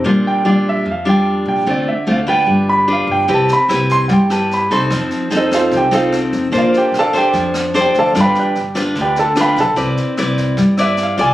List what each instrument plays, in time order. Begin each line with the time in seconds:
0.04 upright bass A#1, nylon-string guitar A#2 G3 D4 F4
0.27 grand piano G5
0.45 upright bass A#1, nylon-string guitar G3 D4 F4
0.51 grand piano D5
0.69 grand piano E5
0.86 upright bass F2, nylon-string guitar F3
0.91 grand piano F5
1.05 nylon-string guitar G3 D4 F4, grand piano G5
1.46 upright bass A#1, grand piano G5
1.66 upright bass D2, nylon-string guitar D3 A3 C4 F4, grand piano D5
1.88 grand piano E5
2.07 upright bass D2, nylon-string guitar A3 C4 F4
2.12 grand piano F5
2.27 nylon-string guitar D4 F4 B4, grand piano G5
2.46 upright bass G1, nylon-string guitar G3
2.69 grand piano B5
2.88 nylon-string guitar D4 F4 B4
2.93 grand piano F5
3.07 upright bass G1
3.12 grand piano G5
3.28 upright bass C2, nylon-string guitar C4 E4 G4 B4, kick, snare
3.34 grand piano A5
3.48 snare
3.53 grand piano B5
3.68 upright bass C2, nylon-string guitar E4 G4 B4, cross-stick, snare
3.89 grand piano C6, kick, snare
4.08 upright bass G2, nylon-string guitar G3, grand piano F#5, kick, snare
4.13 grand piano G5
4.30 nylon-string guitar E4 G4 B4, grand piano A5, cross-stick, snare
4.51 grand piano B5, snare
4.70 upright bass C2, nylon-string guitar C4 D#4 A4, grand piano C6, kick, snare
4.90 upright bass F2, nylon-string guitar F3, kick, cross-stick, snare
5.10 snare
5.30 upright bass F2, nylon-string guitar C4 D#4 A4, snare
5.37 grand piano D#4 A4 C5 D#5
5.51 grand piano F4 A4 C5 F5, kick, cross-stick, snare
5.72 upright bass C2, nylon-string guitar C3, kick, snare
5.77 grand piano G4 G5
5.91 nylon-string guitar C4 D#4 A4, grand piano F4 A4 C5 F5, snare
6.12 cross-stick, snare
6.33 upright bass F2, kick, snare
6.52 upright bass A#1, nylon-string guitar A#3 D4 A4 C5, kick, snare
6.58 grand piano F4 C5 D5 F5
6.74 grand piano G4 G5, snare
6.92 upright bass A#1, cross-stick, snare
6.99 grand piano A4 D5 F5 A5
7.13 nylon-string guitar D4 A4 C5, kick, snare
7.17 grand piano G4 G5
7.33 upright bass F2, nylon-string guitar F3, kick, snare
7.54 cross-stick, snare
7.74 nylon-string guitar D4 A4 C5, snare
7.81 grand piano G4 G5
7.94 upright bass D2, kick, snare
7.99 grand piano A4 D5 F5 A5
8.15 upright bass G1, nylon-string guitar G3 D4 F4 B4, kick, cross-stick, snare
8.20 grand piano B4 F5 G5 B5
8.35 grand piano D5 G5, snare
8.39 grand piano G4 B4
8.55 upright bass G1, snare
8.75 nylon-string guitar D4 F4 B4, kick, cross-stick, snare
8.95 upright bass D2, nylon-string guitar D3, kick, snare
9.01 grand piano G4 B4 D5 G5
9.16 grand piano A4, snare
9.20 grand piano A5
9.36 nylon-string guitar D4 F4 B4, cross-stick, snare
9.41 grand piano B4 F5 G5 B5
9.56 upright bass B1, kick, snare
9.60 grand piano A4 A5
9.76 upright bass C2, nylon-string guitar C4 E4 B4 D5, kick, snare
9.97 snare
10.17 upright bass C2, nylon-string guitar E4 B4 D5, cross-stick, snare
10.37 kick, snare
10.57 upright bass G2, nylon-string guitar G3, kick, snare
10.77 nylon-string guitar E4 B4 D5, grand piano E5, cross-stick, snare
10.97 snare
11.03 grand piano F5
11.18 upright bass C2, nylon-string guitar F4 A4 D5, grand piano G#5, kick, snare